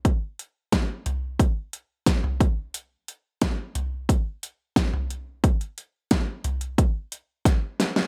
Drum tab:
HH |x-x-x-x-x-x-x-x-|x-x-x-x-x-x-x-x-|xxx-x-xxx-x-x-x-|
SD |----o-------o---|----o-------o---|----o-------o-oo|
FT |------o------o--|------o------o--|------o---------|
BD |o---o---o---o-o-|----o---o---o---|o---o---o---o---|